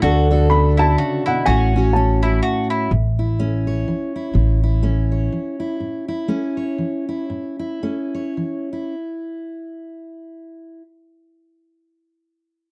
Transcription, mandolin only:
0.02 0.50 F#4 medium
0.77 0.98 E4 medium
0.98 1.25 F#4 medium
1.26 1.46 E4 medium
1.46 1.94 F#4 medium
2.23 2.42 E4 medium
2.43 2.70 F#4 medium
2.70 2.91 E4 medium

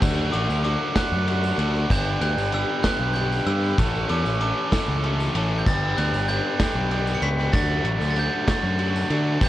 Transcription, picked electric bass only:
0.02 0.28 D2 medium
0.34 0.47 A1 medium
0.49 0.75 D2 medium
1.12 1.51 F#2 medium
1.58 1.85 D2 loud
1.90 2.16 G1 medium
2.21 2.35 D2 medium
2.37 2.63 G1 medium
3.00 3.39 B1 medium
3.47 3.73 G2 medium
3.78 4.05 A1 loud
4.10 4.23 E2 medium
4.25 4.52 A1 medium
4.88 5.28 C#2 medium
5.35 5.61 A1 medium
5.67 5.93 G1 medium
5.98 6.11 D2 medium
6.13 6.39 G1 medium
6.75 7.15 B1 medium
7.22 7.49 C#2 medium
7.53 7.80 D2 loud
7.85 7.98 A1 medium
8.01 8.27 D2 medium
8.63 9.03 F#2 medium
9.10 9.36 D3 loud
9.41 9.49 G1 medium

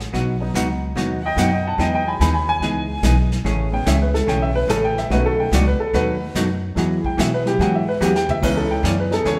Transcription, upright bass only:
0.00 0.12 A1 medium
0.14 0.53 B1 medium
0.54 0.95 C#2 medium
0.95 1.36 D#2 medium
1.37 1.77 F#2 medium
1.78 2.19 E2 medium
2.20 2.60 D#2 medium
2.60 3.01 C#2 medium
3.03 3.43 B1 medium
3.44 3.84 A1 medium
3.86 4.26 C#2 medium
4.27 4.67 B1 medium
4.68 5.08 A1 medium
5.10 5.50 B1 medium
5.52 5.77 C#2 loud
5.94 6.33 D#2 medium
6.35 6.75 F#2 medium
6.76 7.16 E2 medium
7.18 7.58 B2 loud
7.59 7.99 G#2 medium
8.01 8.41 E2 medium
8.43 8.83 C#2 medium
8.83 9.24 F#2 medium
9.25 9.39 E2 medium

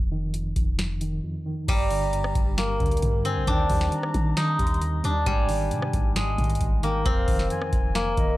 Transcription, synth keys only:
0.00 0.33 F2 medium
0.12 1.00 D#3 medium
0.34 0.55 F2 medium
0.56 0.77 F2 medium
0.79 1.22 F2 medium
1.01 1.45 D#3 medium
1.24 1.68 F2 medium
1.46 1.68 D#3 medium
1.68 2.12 G2 medium
1.91 2.79 D3 medium
2.13 2.34 G2 medium
2.35 2.56 G2 medium
2.58 3.01 G2 medium
2.80 3.24 D3 medium
3.02 3.47 G2 medium
3.25 3.47 D3 medium
3.47 3.91 D#3 loud
3.70 4.58 G3 medium
3.92 4.13 D#3 medium
4.14 4.35 D#3 medium
4.37 4.80 D#3 medium
4.59 5.03 G3 medium
4.82 5.26 D#3 medium
5.04 5.26 G3 medium
5.26 5.70 G#2 medium
5.49 6.37 D#3 medium
5.71 5.92 G#2 medium
5.94 6.15 G#2 medium
6.16 6.60 G#2 medium
6.38 6.82 D#3 medium
6.61 7.06 G#2 medium
6.83 7.05 D#3 medium
7.05 7.49 F2 loud
7.28 8.16 D#3 medium
7.50 7.72 F2 medium
7.73 7.94 F2 medium
7.95 8.37 F2 medium
8.18 8.37 D#3 medium

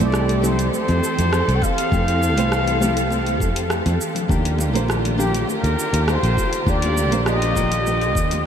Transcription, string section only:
0.00 4.26 E3 medium
0.00 4.26 C4 medium
0.00 4.25 G4 medium
0.00 4.26 A4 medium
4.30 8.46 D3 medium
4.30 8.46 D#3 medium
4.30 8.46 F4 medium
4.30 8.46 G4 medium

